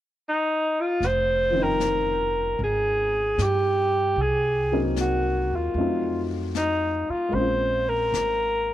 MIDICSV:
0, 0, Header, 1, 6, 480
1, 0, Start_track
1, 0, Key_signature, -4, "minor"
1, 0, Tempo, 790514
1, 616, Time_signature, 4, 2, 24, 8
1, 5306, End_track
2, 0, Start_track
2, 0, Title_t, "Alto saxophone"
2, 0, Program_c, 0, 65
2, 174, Note_on_c, 0, 63, 62
2, 487, Note_on_c, 0, 65, 65
2, 497, Note_off_c, 0, 63, 0
2, 643, Note_on_c, 0, 72, 79
2, 652, Note_off_c, 0, 65, 0
2, 986, Note_on_c, 0, 70, 70
2, 995, Note_off_c, 0, 72, 0
2, 1594, Note_off_c, 0, 70, 0
2, 1598, Note_on_c, 0, 68, 73
2, 2078, Note_on_c, 0, 67, 66
2, 2087, Note_off_c, 0, 68, 0
2, 2558, Note_on_c, 0, 68, 68
2, 2567, Note_off_c, 0, 67, 0
2, 2924, Note_off_c, 0, 68, 0
2, 3040, Note_on_c, 0, 66, 58
2, 3373, Note_on_c, 0, 65, 54
2, 3382, Note_off_c, 0, 66, 0
2, 3839, Note_off_c, 0, 65, 0
2, 3985, Note_on_c, 0, 63, 65
2, 4310, Note_on_c, 0, 65, 65
2, 4319, Note_off_c, 0, 63, 0
2, 4458, Note_on_c, 0, 72, 77
2, 4467, Note_off_c, 0, 65, 0
2, 4788, Note_on_c, 0, 70, 70
2, 4797, Note_off_c, 0, 72, 0
2, 5306, Note_off_c, 0, 70, 0
2, 5306, End_track
3, 0, Start_track
3, 0, Title_t, "Grand piano"
3, 0, Program_c, 1, 0
3, 736, Control_c, 1, 64, 127
3, 912, Note_on_c, 1, 53, 35
3, 926, Note_on_c, 1, 51, 35
3, 945, Note_on_c, 1, 60, 33
3, 964, Note_on_c, 1, 63, 32
3, 984, Note_on_c, 1, 79, 41
3, 2520, Note_off_c, 1, 53, 0
3, 2527, Note_off_c, 1, 51, 0
3, 2537, Note_off_c, 1, 60, 0
3, 2546, Note_off_c, 1, 63, 0
3, 2546, Control_c, 1, 64, 0
3, 2556, Note_off_c, 1, 79, 0
3, 2667, Control_c, 1, 64, 127
3, 2867, Note_on_c, 1, 54, 41
3, 2870, Note_on_c, 1, 58, 37
3, 2871, Note_on_c, 1, 60, 34
3, 2872, Note_on_c, 1, 63, 35
3, 2874, Note_on_c, 1, 70, 42
3, 3496, Note_off_c, 1, 54, 0
3, 3498, Note_off_c, 1, 58, 0
3, 3499, Note_off_c, 1, 60, 0
3, 3499, Note_off_c, 1, 63, 0
3, 3500, Note_off_c, 1, 70, 0
3, 3501, Note_on_c, 1, 57, 35
3, 3505, Control_c, 1, 64, 0
3, 3505, Note_on_c, 1, 54, 36
3, 3509, Note_on_c, 1, 63, 38
3, 3510, Note_on_c, 1, 60, 36
3, 3513, Note_on_c, 1, 65, 43
3, 3623, Control_c, 1, 64, 127
3, 4425, Note_on_c, 1, 56, 37
3, 4441, Note_on_c, 1, 58, 34
3, 4451, Note_off_c, 1, 60, 0
3, 4457, Note_off_c, 1, 57, 0
3, 4459, Note_off_c, 1, 54, 0
3, 4460, Note_on_c, 1, 60, 31
3, 4461, Note_off_c, 1, 63, 0
3, 4463, Note_off_c, 1, 65, 0
3, 4464, Control_c, 1, 64, 0
3, 4471, Note_on_c, 1, 61, 34
3, 4493, Note_on_c, 1, 65, 40
3, 4584, Control_c, 1, 64, 127
3, 5306, Note_off_c, 1, 56, 0
3, 5306, Note_off_c, 1, 58, 0
3, 5306, Note_off_c, 1, 60, 0
3, 5306, Note_off_c, 1, 61, 0
3, 5306, Note_off_c, 1, 65, 0
3, 5306, End_track
4, 0, Start_track
4, 0, Title_t, "Upright bass"
4, 0, Program_c, 2, 32
4, 609, Note_on_c, 2, 29, 59
4, 1550, Note_off_c, 2, 29, 0
4, 1571, Note_on_c, 2, 32, 63
4, 2030, Note_off_c, 2, 32, 0
4, 2051, Note_on_c, 2, 43, 55
4, 2509, Note_off_c, 2, 43, 0
4, 2525, Note_on_c, 2, 36, 60
4, 3316, Note_off_c, 2, 36, 0
4, 3339, Note_on_c, 2, 39, 48
4, 3482, Note_off_c, 2, 39, 0
4, 3486, Note_on_c, 2, 41, 61
4, 4275, Note_off_c, 2, 41, 0
4, 4447, Note_on_c, 2, 34, 58
4, 4905, Note_off_c, 2, 34, 0
4, 4932, Note_on_c, 2, 32, 55
4, 5306, Note_off_c, 2, 32, 0
4, 5306, End_track
5, 0, Start_track
5, 0, Title_t, "Muted upright bass strokes"
5, 4304, Note_on_c, 9, 29, 25
5, 4365, Note_off_c, 9, 29, 0
5, 5306, End_track
6, 0, Start_track
6, 0, Title_t, "Drums"
6, 619, Note_on_c, 9, 25, 22
6, 619, Note_on_c, 9, 38, 18
6, 680, Note_off_c, 9, 38, 0
6, 1094, Note_on_c, 9, 38, 33
6, 1094, Note_on_c, 9, 44, 38
6, 1155, Note_off_c, 9, 38, 0
6, 1155, Note_off_c, 9, 44, 0
6, 1576, Note_off_c, 9, 25, 0
6, 1576, Note_on_c, 9, 25, 26
6, 2054, Note_on_c, 9, 38, 31
6, 2054, Note_on_c, 9, 44, 39
6, 2115, Note_off_c, 9, 38, 0
6, 2115, Note_off_c, 9, 44, 0
6, 2535, Note_off_c, 9, 25, 0
6, 2535, Note_on_c, 9, 25, 27
6, 3014, Note_on_c, 9, 38, 31
6, 3014, Note_on_c, 9, 44, 42
6, 3075, Note_off_c, 9, 38, 0
6, 3075, Note_off_c, 9, 44, 0
6, 3499, Note_off_c, 9, 25, 0
6, 3499, Note_on_c, 9, 25, 30
6, 3976, Note_on_c, 9, 38, 32
6, 3976, Note_on_c, 9, 44, 37
6, 4036, Note_off_c, 9, 38, 0
6, 4036, Note_off_c, 9, 44, 0
6, 4459, Note_off_c, 9, 25, 0
6, 4459, Note_on_c, 9, 25, 23
6, 4941, Note_on_c, 9, 38, 32
6, 4941, Note_on_c, 9, 44, 45
6, 5002, Note_off_c, 9, 38, 0
6, 5002, Note_off_c, 9, 44, 0
6, 5306, Note_off_c, 9, 25, 0
6, 5306, End_track
0, 0, End_of_file